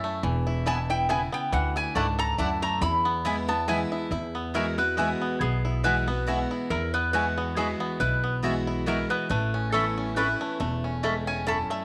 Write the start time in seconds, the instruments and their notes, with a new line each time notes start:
Already playing: steel-string acoustic guitar F#2, five-string banjo C#4 E4, resonator guitar played with a steel bar E5
0.04 five-string banjo A3
0.23 upright bass E1, steel-string acoustic guitar E2, five-string banjo E3
0.47 five-string banjo E4
0.66 steel-string acoustic guitar B2, mandolin B3 E4 B4 G#5, five-string banjo E4, resonator guitar played with a steel bar A5
0.90 five-string banjo E4, resonator guitar played with a steel bar G5
1.09 steel-string acoustic guitar C#3, mandolin B3 E4 B4 G#5, five-string banjo E4, resonator guitar played with a steel bar G#5
1.32 five-string banjo B3, resonator guitar played with a steel bar G5
1.52 upright bass D2, steel-string acoustic guitar D3, five-string banjo E3, resonator guitar played with a steel bar F#5
1.76 five-string banjo E4, resonator guitar played with a steel bar G#5
1.95 upright bass C#2, steel-string acoustic guitar G#2, mandolin A3 E4 D5 F#5, five-string banjo D4, resonator guitar played with a steel bar A5
2.19 five-string banjo A4, resonator guitar played with a steel bar A#5
2.38 upright bass D2, steel-string acoustic guitar F#2, mandolin A3 E4 D5 F#5, five-string banjo E4, resonator guitar played with a steel bar A5
2.62 five-string banjo A3, resonator guitar played with a steel bar A#5
2.81 upright bass E2, steel-string acoustic guitar E2, five-string banjo E4, resonator guitar played with a steel bar B5
3.05 five-string banjo B3
3.25 steel-string acoustic guitar E3 G#3 B3 E4, mandolin B3 E4 B4 G#5, five-string banjo E4
3.48 five-string banjo B3, steel-string acoustic guitar B3 E4, resonator guitar played with a steel bar A5
3.68 steel-string acoustic guitar E3 G#3 B3 E4, mandolin B3 E4 B4 G#5, five-string banjo E4, resonator guitar played with a steel bar G#5
3.92 five-string banjo E4
4.11 upright bass E2, steel-string acoustic guitar E2, five-string banjo E4
4.35 five-string banjo B3
4.54 steel-string acoustic guitar E3 G#3 B3 F#4, mandolin B3 F#4 E5 G#5, five-string banjo E4, resonator guitar played with a steel bar A#4
4.78 steel-string acoustic guitar B3 F#4, five-string banjo E4, resonator guitar played with a steel bar B4
4.97 steel-string acoustic guitar E3 G#3 B3 F#4, mandolin B3 F#4 E5 G#5, five-string banjo E4, resonator guitar played with a steel bar B4
5.22 five-string banjo B3
5.40 upright bass B1, steel-string acoustic guitar B2, five-string banjo B3, resonator guitar played with a steel bar G#4
5.65 five-string banjo E4
5.84 steel-string acoustic guitar E3 G#3 B3 F#4, mandolin B3 F#4 E5 G#5, five-string banjo E4, resonator guitar played with a steel bar B4
6.08 five-string banjo B3, steel-string acoustic guitar B3 F#4
6.27 steel-string acoustic guitar E3 G#3 B3 F#4, mandolin B3 F#4 E5 G#5, five-string banjo E4
6.51 five-string banjo E4
6.70 upright bass E2, steel-string acoustic guitar E2, five-string banjo E4, resonator guitar played with a steel bar A#4
6.94 five-string banjo B3, resonator guitar played with a steel bar B4
7.13 steel-string acoustic guitar E3 G#3 B3 F#4, mandolin B3 F#4 E5 G#5, five-string banjo E4, resonator guitar played with a steel bar B4
7.38 five-string banjo B3
7.56 steel-string acoustic guitar E3 G#3 B3 F#4, mandolin B3 F#4 E5 G#5, five-string banjo E4, resonator guitar played with a steel bar G#4
7.80 five-string banjo B3
8.00 upright bass B1, steel-string acoustic guitar B2, five-string banjo E4, resonator guitar played with a steel bar B4
8.24 five-string banjo B3
8.43 steel-string acoustic guitar E3 G#3 B3 F#4, mandolin B3 F#4 E5 G#5, five-string banjo E4
8.67 five-string banjo E4
8.86 steel-string acoustic guitar E3 G#3 B3 F#4, mandolin B3 F#4 E5 G#5, five-string banjo E4, resonator guitar played with a steel bar A#4
9.10 five-string banjo B3, resonator guitar played with a steel bar B4
9.30 upright bass A1, steel-string acoustic guitar A2, five-string banjo A3, resonator guitar played with a steel bar B4
9.54 five-string banjo C#4
9.72 steel-string acoustic guitar E3 B3 C#4 E4, five-string banjo A3, mandolin C#4 A4 E5 B5, resonator guitar played with a steel bar A4
9.98 five-string banjo C#4
10.16 steel-string acoustic guitar E3 B3 C#4 E4, mandolin C#4 A4 E5 B5, five-string banjo E4, resonator guitar played with a steel bar B4
10.41 five-string banjo A3
10.60 upright bass E1, steel-string acoustic guitar E2, five-string banjo A3
10.84 five-string banjo C#4
11.03 steel-string acoustic guitar G#3, five-string banjo A3, mandolin C#4 A4 E5 B5
11.27 five-string banjo C#4, resonator guitar played with a steel bar G#5
11.47 steel-string acoustic guitar F#2, mandolin C#4 A4 E5 B5, five-string banjo E4, resonator guitar played with a steel bar A5
11.70 five-string banjo A3, resonator guitar played with a steel bar E5